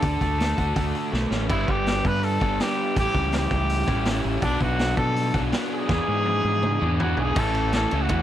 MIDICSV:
0, 0, Header, 1, 5, 480
1, 0, Start_track
1, 0, Tempo, 366972
1, 37, Time_signature, 4, 2, 24, 8
1, 10756, End_track
2, 0, Start_track
2, 0, Title_t, "Trumpet"
2, 0, Program_c, 0, 56
2, 0, Note_on_c, 0, 69, 89
2, 1481, Note_off_c, 0, 69, 0
2, 1957, Note_on_c, 0, 64, 92
2, 2222, Note_on_c, 0, 67, 96
2, 2242, Note_off_c, 0, 64, 0
2, 2704, Note_on_c, 0, 71, 94
2, 2724, Note_off_c, 0, 67, 0
2, 2932, Note_on_c, 0, 69, 95
2, 2952, Note_off_c, 0, 71, 0
2, 3422, Note_on_c, 0, 67, 86
2, 3441, Note_off_c, 0, 69, 0
2, 3894, Note_off_c, 0, 67, 0
2, 3909, Note_on_c, 0, 67, 100
2, 4345, Note_off_c, 0, 67, 0
2, 4407, Note_on_c, 0, 67, 89
2, 5534, Note_off_c, 0, 67, 0
2, 5797, Note_on_c, 0, 62, 94
2, 6042, Note_on_c, 0, 66, 99
2, 6062, Note_off_c, 0, 62, 0
2, 6504, Note_off_c, 0, 66, 0
2, 6511, Note_on_c, 0, 69, 96
2, 7083, Note_off_c, 0, 69, 0
2, 7491, Note_on_c, 0, 68, 98
2, 9113, Note_off_c, 0, 68, 0
2, 9190, Note_on_c, 0, 66, 84
2, 9424, Note_on_c, 0, 68, 91
2, 9444, Note_off_c, 0, 66, 0
2, 9670, Note_on_c, 0, 69, 103
2, 9690, Note_off_c, 0, 68, 0
2, 10123, Note_off_c, 0, 69, 0
2, 10131, Note_on_c, 0, 69, 93
2, 10493, Note_on_c, 0, 66, 88
2, 10512, Note_off_c, 0, 69, 0
2, 10756, Note_off_c, 0, 66, 0
2, 10756, End_track
3, 0, Start_track
3, 0, Title_t, "Overdriven electric guitar"
3, 0, Program_c, 1, 29
3, 0, Note_on_c, 1, 62, 71
3, 49, Note_on_c, 1, 50, 61
3, 283, Note_on_c, 1, 57, 68
3, 501, Note_off_c, 1, 57, 0
3, 517, Note_on_c, 1, 57, 65
3, 759, Note_on_c, 1, 66, 70
3, 985, Note_off_c, 1, 57, 0
3, 1001, Note_on_c, 1, 57, 66
3, 1226, Note_off_c, 1, 50, 0
3, 1242, Note_on_c, 1, 50, 62
3, 1456, Note_off_c, 1, 57, 0
3, 1472, Note_on_c, 1, 57, 68
3, 1700, Note_off_c, 1, 62, 0
3, 1705, Note_on_c, 1, 61, 66
3, 1931, Note_off_c, 1, 50, 0
3, 1933, Note_on_c, 1, 43, 75
3, 1947, Note_on_c, 1, 50, 79
3, 1954, Note_off_c, 1, 61, 0
3, 1957, Note_off_c, 1, 57, 0
3, 1962, Note_on_c, 1, 55, 74
3, 1963, Note_off_c, 1, 66, 0
3, 1972, Note_on_c, 1, 59, 87
3, 1981, Note_on_c, 1, 62, 84
3, 3124, Note_off_c, 1, 62, 0
3, 3136, Note_off_c, 1, 43, 0
3, 3140, Note_off_c, 1, 59, 0
3, 3140, Note_on_c, 1, 62, 73
3, 3143, Note_off_c, 1, 50, 0
3, 3150, Note_off_c, 1, 55, 0
3, 3156, Note_on_c, 1, 59, 85
3, 3168, Note_on_c, 1, 55, 69
3, 3181, Note_on_c, 1, 50, 77
3, 3193, Note_on_c, 1, 43, 76
3, 3379, Note_off_c, 1, 62, 0
3, 3383, Note_off_c, 1, 43, 0
3, 3386, Note_off_c, 1, 59, 0
3, 3392, Note_off_c, 1, 55, 0
3, 3398, Note_on_c, 1, 43, 85
3, 3399, Note_off_c, 1, 50, 0
3, 3412, Note_on_c, 1, 50, 72
3, 3426, Note_on_c, 1, 55, 84
3, 3432, Note_on_c, 1, 59, 76
3, 3447, Note_on_c, 1, 62, 81
3, 3856, Note_off_c, 1, 43, 0
3, 3861, Note_on_c, 1, 45, 72
3, 3870, Note_off_c, 1, 50, 0
3, 3872, Note_off_c, 1, 55, 0
3, 3876, Note_on_c, 1, 52, 81
3, 3885, Note_off_c, 1, 59, 0
3, 3888, Note_on_c, 1, 55, 86
3, 3892, Note_off_c, 1, 62, 0
3, 3901, Note_on_c, 1, 61, 76
3, 3911, Note_on_c, 1, 64, 94
3, 5046, Note_off_c, 1, 64, 0
3, 5060, Note_off_c, 1, 45, 0
3, 5060, Note_off_c, 1, 61, 0
3, 5062, Note_on_c, 1, 64, 90
3, 5067, Note_off_c, 1, 52, 0
3, 5069, Note_off_c, 1, 55, 0
3, 5076, Note_on_c, 1, 61, 72
3, 5085, Note_on_c, 1, 55, 78
3, 5099, Note_on_c, 1, 52, 75
3, 5108, Note_on_c, 1, 45, 70
3, 5299, Note_off_c, 1, 64, 0
3, 5302, Note_off_c, 1, 45, 0
3, 5306, Note_off_c, 1, 61, 0
3, 5311, Note_off_c, 1, 55, 0
3, 5315, Note_off_c, 1, 52, 0
3, 5318, Note_on_c, 1, 45, 79
3, 5330, Note_on_c, 1, 52, 82
3, 5343, Note_on_c, 1, 55, 86
3, 5357, Note_on_c, 1, 61, 79
3, 5368, Note_on_c, 1, 64, 90
3, 5788, Note_off_c, 1, 45, 0
3, 5794, Note_off_c, 1, 52, 0
3, 5795, Note_on_c, 1, 47, 78
3, 5800, Note_off_c, 1, 55, 0
3, 5801, Note_on_c, 1, 54, 85
3, 5807, Note_off_c, 1, 61, 0
3, 5812, Note_off_c, 1, 64, 0
3, 5817, Note_on_c, 1, 59, 92
3, 5829, Note_on_c, 1, 62, 80
3, 5844, Note_on_c, 1, 66, 95
3, 6964, Note_off_c, 1, 66, 0
3, 6980, Note_on_c, 1, 66, 91
3, 6984, Note_off_c, 1, 62, 0
3, 6985, Note_off_c, 1, 47, 0
3, 6988, Note_off_c, 1, 54, 0
3, 6996, Note_off_c, 1, 59, 0
3, 7000, Note_on_c, 1, 62, 81
3, 7014, Note_on_c, 1, 59, 79
3, 7022, Note_on_c, 1, 54, 75
3, 7034, Note_on_c, 1, 47, 72
3, 7213, Note_off_c, 1, 47, 0
3, 7218, Note_off_c, 1, 66, 0
3, 7226, Note_off_c, 1, 54, 0
3, 7228, Note_off_c, 1, 62, 0
3, 7229, Note_on_c, 1, 47, 80
3, 7235, Note_off_c, 1, 59, 0
3, 7242, Note_on_c, 1, 54, 82
3, 7256, Note_on_c, 1, 59, 85
3, 7266, Note_on_c, 1, 62, 87
3, 7279, Note_on_c, 1, 66, 97
3, 7694, Note_off_c, 1, 54, 0
3, 7699, Note_on_c, 1, 52, 86
3, 7702, Note_off_c, 1, 47, 0
3, 7702, Note_off_c, 1, 59, 0
3, 7718, Note_on_c, 1, 59, 93
3, 7720, Note_off_c, 1, 62, 0
3, 7727, Note_off_c, 1, 66, 0
3, 7734, Note_on_c, 1, 62, 88
3, 7744, Note_on_c, 1, 68, 96
3, 8874, Note_off_c, 1, 68, 0
3, 8890, Note_on_c, 1, 68, 81
3, 8895, Note_off_c, 1, 52, 0
3, 8900, Note_off_c, 1, 62, 0
3, 8905, Note_off_c, 1, 59, 0
3, 8915, Note_on_c, 1, 62, 84
3, 8929, Note_on_c, 1, 59, 73
3, 8945, Note_on_c, 1, 52, 73
3, 9127, Note_off_c, 1, 52, 0
3, 9132, Note_off_c, 1, 68, 0
3, 9143, Note_on_c, 1, 52, 83
3, 9144, Note_off_c, 1, 62, 0
3, 9151, Note_off_c, 1, 59, 0
3, 9167, Note_on_c, 1, 59, 86
3, 9179, Note_on_c, 1, 62, 94
3, 9195, Note_on_c, 1, 68, 95
3, 9617, Note_off_c, 1, 52, 0
3, 9627, Note_on_c, 1, 45, 87
3, 9630, Note_off_c, 1, 59, 0
3, 9631, Note_on_c, 1, 52, 90
3, 9635, Note_off_c, 1, 62, 0
3, 9642, Note_on_c, 1, 57, 93
3, 9644, Note_off_c, 1, 68, 0
3, 9649, Note_on_c, 1, 61, 87
3, 9651, Note_on_c, 1, 64, 93
3, 10093, Note_off_c, 1, 45, 0
3, 10107, Note_off_c, 1, 52, 0
3, 10109, Note_on_c, 1, 45, 83
3, 10120, Note_off_c, 1, 61, 0
3, 10122, Note_on_c, 1, 52, 92
3, 10126, Note_off_c, 1, 57, 0
3, 10126, Note_off_c, 1, 64, 0
3, 10131, Note_on_c, 1, 57, 82
3, 10136, Note_on_c, 1, 61, 88
3, 10142, Note_on_c, 1, 64, 90
3, 10328, Note_off_c, 1, 45, 0
3, 10333, Note_off_c, 1, 52, 0
3, 10343, Note_on_c, 1, 45, 82
3, 10349, Note_on_c, 1, 52, 94
3, 10350, Note_off_c, 1, 57, 0
3, 10355, Note_on_c, 1, 57, 97
3, 10356, Note_off_c, 1, 64, 0
3, 10357, Note_off_c, 1, 61, 0
3, 10372, Note_on_c, 1, 61, 92
3, 10372, Note_on_c, 1, 64, 104
3, 10565, Note_off_c, 1, 45, 0
3, 10573, Note_off_c, 1, 52, 0
3, 10581, Note_on_c, 1, 45, 97
3, 10586, Note_off_c, 1, 61, 0
3, 10588, Note_off_c, 1, 57, 0
3, 10589, Note_on_c, 1, 52, 89
3, 10593, Note_on_c, 1, 57, 108
3, 10599, Note_off_c, 1, 64, 0
3, 10602, Note_on_c, 1, 61, 114
3, 10614, Note_on_c, 1, 64, 99
3, 10756, Note_off_c, 1, 45, 0
3, 10756, Note_off_c, 1, 52, 0
3, 10756, Note_off_c, 1, 57, 0
3, 10756, Note_off_c, 1, 61, 0
3, 10756, Note_off_c, 1, 64, 0
3, 10756, End_track
4, 0, Start_track
4, 0, Title_t, "Fingered electric bass"
4, 0, Program_c, 2, 33
4, 40, Note_on_c, 2, 38, 93
4, 249, Note_off_c, 2, 38, 0
4, 274, Note_on_c, 2, 38, 77
4, 696, Note_off_c, 2, 38, 0
4, 762, Note_on_c, 2, 38, 77
4, 971, Note_off_c, 2, 38, 0
4, 999, Note_on_c, 2, 38, 80
4, 1210, Note_off_c, 2, 38, 0
4, 1479, Note_on_c, 2, 35, 86
4, 1697, Note_off_c, 2, 35, 0
4, 1708, Note_on_c, 2, 33, 76
4, 1931, Note_off_c, 2, 33, 0
4, 1954, Note_on_c, 2, 31, 91
4, 2168, Note_off_c, 2, 31, 0
4, 2203, Note_on_c, 2, 31, 79
4, 2623, Note_off_c, 2, 31, 0
4, 2678, Note_on_c, 2, 43, 84
4, 3101, Note_off_c, 2, 43, 0
4, 3162, Note_on_c, 2, 31, 88
4, 3374, Note_off_c, 2, 31, 0
4, 3885, Note_on_c, 2, 33, 86
4, 3990, Note_off_c, 2, 33, 0
4, 4109, Note_on_c, 2, 37, 81
4, 4536, Note_off_c, 2, 37, 0
4, 4590, Note_on_c, 2, 37, 81
4, 5017, Note_off_c, 2, 37, 0
4, 5072, Note_on_c, 2, 33, 90
4, 5498, Note_off_c, 2, 33, 0
4, 5557, Note_on_c, 2, 33, 81
4, 5771, Note_off_c, 2, 33, 0
4, 5784, Note_on_c, 2, 35, 93
4, 6003, Note_off_c, 2, 35, 0
4, 6029, Note_on_c, 2, 35, 84
4, 6455, Note_off_c, 2, 35, 0
4, 6508, Note_on_c, 2, 47, 80
4, 6935, Note_off_c, 2, 47, 0
4, 6991, Note_on_c, 2, 35, 95
4, 7207, Note_off_c, 2, 35, 0
4, 7713, Note_on_c, 2, 40, 89
4, 7822, Note_off_c, 2, 40, 0
4, 7953, Note_on_c, 2, 44, 89
4, 8377, Note_off_c, 2, 44, 0
4, 8431, Note_on_c, 2, 44, 86
4, 8856, Note_off_c, 2, 44, 0
4, 8915, Note_on_c, 2, 40, 95
4, 9337, Note_off_c, 2, 40, 0
4, 9379, Note_on_c, 2, 35, 85
4, 9599, Note_off_c, 2, 35, 0
4, 9630, Note_on_c, 2, 33, 94
4, 10263, Note_off_c, 2, 33, 0
4, 10364, Note_on_c, 2, 37, 86
4, 10572, Note_off_c, 2, 37, 0
4, 10590, Note_on_c, 2, 40, 92
4, 10756, Note_off_c, 2, 40, 0
4, 10756, End_track
5, 0, Start_track
5, 0, Title_t, "Drums"
5, 29, Note_on_c, 9, 46, 65
5, 34, Note_on_c, 9, 36, 99
5, 159, Note_off_c, 9, 46, 0
5, 165, Note_off_c, 9, 36, 0
5, 277, Note_on_c, 9, 36, 68
5, 281, Note_on_c, 9, 46, 47
5, 407, Note_off_c, 9, 36, 0
5, 411, Note_off_c, 9, 46, 0
5, 527, Note_on_c, 9, 46, 61
5, 535, Note_on_c, 9, 38, 90
5, 658, Note_off_c, 9, 46, 0
5, 665, Note_off_c, 9, 38, 0
5, 759, Note_on_c, 9, 36, 79
5, 759, Note_on_c, 9, 46, 49
5, 889, Note_off_c, 9, 36, 0
5, 890, Note_off_c, 9, 46, 0
5, 994, Note_on_c, 9, 46, 77
5, 995, Note_on_c, 9, 36, 110
5, 1125, Note_off_c, 9, 46, 0
5, 1126, Note_off_c, 9, 36, 0
5, 1240, Note_on_c, 9, 46, 48
5, 1371, Note_off_c, 9, 46, 0
5, 1485, Note_on_c, 9, 38, 57
5, 1616, Note_off_c, 9, 38, 0
5, 1716, Note_on_c, 9, 38, 69
5, 1847, Note_off_c, 9, 38, 0
5, 1956, Note_on_c, 9, 36, 104
5, 1959, Note_on_c, 9, 49, 90
5, 2087, Note_off_c, 9, 36, 0
5, 2090, Note_off_c, 9, 49, 0
5, 2198, Note_on_c, 9, 36, 82
5, 2329, Note_off_c, 9, 36, 0
5, 2441, Note_on_c, 9, 46, 51
5, 2448, Note_on_c, 9, 38, 98
5, 2571, Note_off_c, 9, 46, 0
5, 2579, Note_off_c, 9, 38, 0
5, 2679, Note_on_c, 9, 36, 80
5, 2810, Note_off_c, 9, 36, 0
5, 2811, Note_on_c, 9, 38, 29
5, 2916, Note_on_c, 9, 46, 58
5, 2942, Note_off_c, 9, 38, 0
5, 3046, Note_off_c, 9, 46, 0
5, 3156, Note_on_c, 9, 36, 85
5, 3287, Note_off_c, 9, 36, 0
5, 3399, Note_on_c, 9, 46, 60
5, 3407, Note_on_c, 9, 38, 122
5, 3530, Note_off_c, 9, 46, 0
5, 3537, Note_off_c, 9, 38, 0
5, 3878, Note_on_c, 9, 36, 103
5, 3879, Note_on_c, 9, 46, 58
5, 4009, Note_off_c, 9, 36, 0
5, 4010, Note_off_c, 9, 46, 0
5, 4114, Note_on_c, 9, 36, 76
5, 4245, Note_off_c, 9, 36, 0
5, 4344, Note_on_c, 9, 46, 55
5, 4352, Note_on_c, 9, 38, 95
5, 4475, Note_off_c, 9, 46, 0
5, 4483, Note_off_c, 9, 38, 0
5, 4590, Note_on_c, 9, 36, 84
5, 4721, Note_off_c, 9, 36, 0
5, 4832, Note_on_c, 9, 46, 68
5, 4963, Note_off_c, 9, 46, 0
5, 5071, Note_on_c, 9, 36, 90
5, 5202, Note_off_c, 9, 36, 0
5, 5301, Note_on_c, 9, 46, 62
5, 5309, Note_on_c, 9, 38, 113
5, 5432, Note_off_c, 9, 46, 0
5, 5440, Note_off_c, 9, 38, 0
5, 5776, Note_on_c, 9, 46, 49
5, 5785, Note_on_c, 9, 36, 104
5, 5907, Note_off_c, 9, 46, 0
5, 5916, Note_off_c, 9, 36, 0
5, 6024, Note_on_c, 9, 36, 78
5, 6155, Note_off_c, 9, 36, 0
5, 6266, Note_on_c, 9, 46, 50
5, 6274, Note_on_c, 9, 38, 99
5, 6397, Note_off_c, 9, 46, 0
5, 6405, Note_off_c, 9, 38, 0
5, 6504, Note_on_c, 9, 36, 83
5, 6635, Note_off_c, 9, 36, 0
5, 6752, Note_on_c, 9, 46, 57
5, 6883, Note_off_c, 9, 46, 0
5, 6987, Note_on_c, 9, 36, 89
5, 7118, Note_off_c, 9, 36, 0
5, 7223, Note_on_c, 9, 46, 55
5, 7231, Note_on_c, 9, 38, 111
5, 7354, Note_off_c, 9, 46, 0
5, 7362, Note_off_c, 9, 38, 0
5, 7706, Note_on_c, 9, 36, 109
5, 7710, Note_on_c, 9, 38, 58
5, 7837, Note_off_c, 9, 36, 0
5, 7841, Note_off_c, 9, 38, 0
5, 8182, Note_on_c, 9, 48, 66
5, 8313, Note_off_c, 9, 48, 0
5, 8668, Note_on_c, 9, 47, 90
5, 8798, Note_off_c, 9, 47, 0
5, 8915, Note_on_c, 9, 45, 78
5, 9046, Note_off_c, 9, 45, 0
5, 9154, Note_on_c, 9, 43, 111
5, 9285, Note_off_c, 9, 43, 0
5, 9378, Note_on_c, 9, 43, 85
5, 9509, Note_off_c, 9, 43, 0
5, 9626, Note_on_c, 9, 49, 118
5, 9629, Note_on_c, 9, 36, 113
5, 9757, Note_off_c, 9, 49, 0
5, 9760, Note_off_c, 9, 36, 0
5, 9870, Note_on_c, 9, 51, 72
5, 10001, Note_off_c, 9, 51, 0
5, 10106, Note_on_c, 9, 51, 83
5, 10114, Note_on_c, 9, 38, 105
5, 10237, Note_off_c, 9, 51, 0
5, 10245, Note_off_c, 9, 38, 0
5, 10348, Note_on_c, 9, 51, 74
5, 10479, Note_off_c, 9, 51, 0
5, 10579, Note_on_c, 9, 51, 101
5, 10589, Note_on_c, 9, 36, 97
5, 10710, Note_off_c, 9, 51, 0
5, 10720, Note_off_c, 9, 36, 0
5, 10756, End_track
0, 0, End_of_file